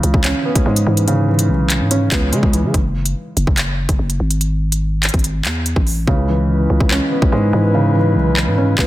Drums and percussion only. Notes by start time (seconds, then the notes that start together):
0.03 closed hi-hat
0.14 kick
0.24 clap, closed hi-hat
0.55 kick, closed hi-hat
0.76 closed hi-hat
0.97 closed hi-hat
1.08 closed hi-hat
1.39 closed hi-hat
1.70 clap, closed hi-hat
1.91 closed hi-hat
2.12 kick, clap, closed hi-hat
2.33 closed hi-hat
2.43 kick
2.53 closed hi-hat
2.74 kick, closed hi-hat
3.06 closed hi-hat
3.37 closed hi-hat
3.47 kick
3.58 clap, closed hi-hat
3.89 kick, closed hi-hat
4.10 closed hi-hat
4.31 closed hi-hat
4.41 closed hi-hat
4.72 closed hi-hat
5.03 clap, closed hi-hat
5.09 closed hi-hat
5.14 kick, closed hi-hat
5.19 closed hi-hat
5.24 closed hi-hat
5.45 clap, closed hi-hat
5.66 closed hi-hat
5.76 kick
5.87 open hi-hat
6.07 kick
6.80 kick
6.91 clap
7.22 kick
8.37 clap
8.78 kick, clap